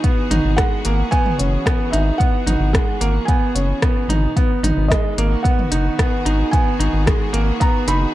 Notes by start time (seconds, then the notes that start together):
Already playing: B3 F#4 G#4
0.04 E3 B3, kick, closed hi-hat
0.31 G#1 D#4, closed hi-hat, mid tom
0.44 G#1
0.57 G#3 F#5, kick, cross-stick, closed hi-hat
0.85 G#1 A#3, closed hi-hat
1.11 B3 G#5, kick, closed hi-hat
1.26 mid tom
1.38 F#1 C#4, closed hi-hat
1.66 B3, kick, cross-stick, closed hi-hat
1.91 G#1 D#4 E5, closed hi-hat
2.18 B3 F#5, kick, closed hi-hat
2.46 G#1 D#4, closed hi-hat, mid tom
2.60 G#1
2.73 G#3, kick, cross-stick, closed hi-hat
3.01 G#1 A#3, closed hi-hat
3.25 B3 G#5, kick, closed hi-hat
3.55 F#1 C#4, closed hi-hat
3.82 B3, kick, cross-stick, closed hi-hat
4.09 G#1 D#4, closed hi-hat, mid tom
4.36 D#3 B3, kick, closed hi-hat
4.45 B3
4.63 G#1 D#4, closed hi-hat, mid tom
4.77 G#1
4.88 G#3 D#5, kick, cross-stick, closed hi-hat
5.18 G#1 A#3, closed hi-hat
5.25 F#4
5.43 B3 F#5, kick, closed hi-hat
5.59 mid tom
5.71 F#1 D#4, closed hi-hat
5.99 B3 G#4, kick, cross-stick, closed hi-hat
6.25 G#1 D#4, closed hi-hat
6.51 B3 G#5, kick, closed hi-hat
6.79 G#1 D#4, closed hi-hat
6.93 G#1
7.06 G#3, kick, cross-stick, closed hi-hat
7.33 G#1 A#3, closed hi-hat
7.60 B3 A#5, kick, closed hi-hat
7.87 F#1 D#4 B5, closed hi-hat